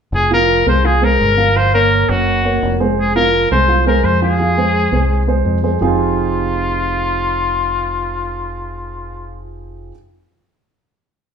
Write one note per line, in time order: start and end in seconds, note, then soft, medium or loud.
0.12 0.62 F1 medium
0.12 0.31 G#4 medium
0.31 0.60 F3 medium
0.31 0.60 F4 medium
0.31 0.66 A#4 loud
0.31 0.60 F5 medium
0.66 1.16 C2 medium
0.66 0.81 G#3 medium
0.66 0.81 G#4 medium
0.66 0.82 C5 medium
0.66 0.87 C5 medium
0.84 0.99 F3 medium
0.84 0.99 F4 medium
0.84 1.06 G#4 medium
0.84 0.99 F5 medium
1.02 1.31 G#3 medium
1.02 1.31 G#4 medium
1.02 1.58 A#4 loud
1.02 1.32 C5 medium
1.20 2.03 G1 medium
1.37 1.52 F3 medium
1.37 1.52 F4 medium
1.37 1.52 F5 medium
1.56 1.70 F3 medium
1.56 1.70 F4 medium
1.56 1.74 C5 loud
1.56 1.70 F5 medium
1.74 2.03 A#3 medium
1.74 2.03 A#4 medium
1.74 2.11 A#4 loud
1.74 2.03 C#5 medium
2.09 2.58 F#1 medium
2.09 2.38 A#3 medium
2.09 2.80 F#4 medium
2.09 2.38 A#4 medium
2.09 2.38 C#5 medium
2.44 2.73 A#3 medium
2.44 2.74 A#4 medium
2.44 2.74 C#5 medium
2.63 3.45 F1 medium
2.80 3.09 G#3 medium
2.80 3.09 G#4 medium
2.80 3.09 C5 medium
2.99 3.15 G#4 medium
3.16 3.45 F3 medium
3.16 3.45 F4 medium
3.16 3.49 A#4 loud
3.16 3.45 F5 medium
3.51 4.01 C2 medium
3.51 3.66 G#3 medium
3.51 3.66 G#4 medium
3.51 3.84 C5 loud
3.51 3.66 C5 medium
3.68 3.83 F3 medium
3.68 3.83 F4 medium
3.68 3.83 F5 medium
3.86 4.15 G#3 medium
3.86 4.16 G#4 medium
3.86 4.06 A#4 medium
3.86 4.16 C5 medium
4.04 4.87 F2 medium
4.04 4.22 C5 medium
4.22 4.36 F3 medium
4.22 4.36 F4 medium
4.22 5.43 G#4 medium
4.22 4.36 F5 medium
4.39 4.54 F3 medium
4.39 4.54 F4 medium
4.39 4.54 F5 medium
4.57 4.86 G#3 medium
4.57 4.86 G#4 medium
4.57 4.87 C5 medium
4.92 5.42 C2 medium
4.92 5.21 G#3 medium
4.92 5.22 G#4 medium
4.92 5.22 C5 medium
5.27 5.57 G#3 medium
5.27 5.57 G#4 medium
5.27 5.57 C5 medium
5.45 5.77 F2 medium
5.63 5.78 G#3 medium
5.63 5.78 G#4 medium
5.63 5.78 C5 medium
5.81 9.91 F1 medium
5.81 9.91 F3 medium
5.81 9.91 C4 medium
5.81 9.91 D#4 medium
5.81 9.43 F4 medium
5.81 9.92 F4 medium
5.81 9.92 G4 medium
5.81 9.92 G#4 medium